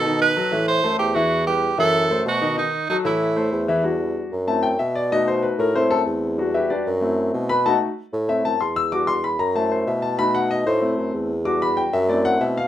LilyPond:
<<
  \new Staff \with { instrumentName = "Tenor saxophone" } { \time 4/4 \key e \minor \tempo 4 = 189 a'8 b'4. c''4 g'8 fis'8~ | fis'8 g'4 a'4. fis'4 | dis'4 dis'8 e'2 r8 | r1 |
r1 | r1 | r1 | r1 |
r1 | r1 | }
  \new Staff \with { instrumentName = "Grand piano" } { \time 4/4 \key e \minor << { <dis dis' dis''>4 <fis fis' a'>8 <e e' e''>4 <a a' c''>4 <e e' e''>8~ | <e e' e''>8 <g g' b'>4 <e e' e''>4 <a a' c''>4 <dis dis' dis''>8 | <dis dis' dis''>4 <fis fis' a'>8 <e e' e''>4 <a a' c''>4 <e e' e''>8 | r2 a''8 g''8 e''8 d''8 |
dis''8 c''8 b'8 ais'8 c''8 a'8 r4 | r8 <e' g' b' e''>8 <d' g' b' d''>8 r2 <b' b''>8 | <a' dis'' fis'' a''>8 r4. e''8 a''8 c'''8 e'''8 | d'''8 c'''8 b''8 ais''8 a''8 c''8 e''8 a''8 |
b''8 fis''8 dis''8 c''4. r4 | d'''8 b''8 g''8 e''8 d''8 fis''8 e''8 f''8 | } \\ { r1 | r1 | r1 | <g d' fis'>4. r8 <a c' e'>8 r4. |
<a dis' fis'>2 <a c' e'>2 | <g d' fis'>2 <a c' e'>4. r8 | <a dis' fis'>8 r4. <a c' e'>8 r4. | <g d' fis'>8 r4. <a e' c''>2 |
<a dis' fis'>2 <a c' e'>4. r8 | <g d' fis'>2 <a c' e'>4. r8 | } >> }
  \new Staff \with { instrumentName = "Bassoon" } { \clef bass \time 4/4 \key e \minor b,4. a,4 fis,8 e,4~ | e,4. fis,4. b,4~ | b,8 r4 a,4. e,4~ | e,4. fis,4. b,4~ |
b,4. a,4 fis,8 e,4~ | e,4. fis,4. b,4~ | b,8 r4 a,4 fis,8 e,4~ | e,4. fis,4. b,4~ |
b,4. a,4 fis,8 e,4~ | e,4. fis,4. b,4 | }
>>